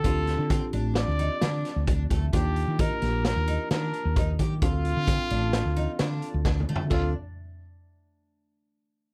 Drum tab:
CC |------------------------------|------------------------------|------------------------------|x-----------------------------|
HH |x--x--x--x--x--x--x--x--x--x--|x--x--x--x--x--x--x--x--x--x--|x--x--x--x--x--x--x--x--------|------------------------------|
SD |---o--o-----o-----o--o--------|---------o--o-----o-----------|------o-----o-----o-----o-----|------------------------------|
T2 |------------------------------|------------------------------|--------------------------o---|------------------------------|
FT |------------------------------|------------------------------|----------------------------o-|------------------------------|
BD |o-----o-----------------o--o--|o-----o-----------------o--o--|o-----o-----------------o-----|o-----------------------------|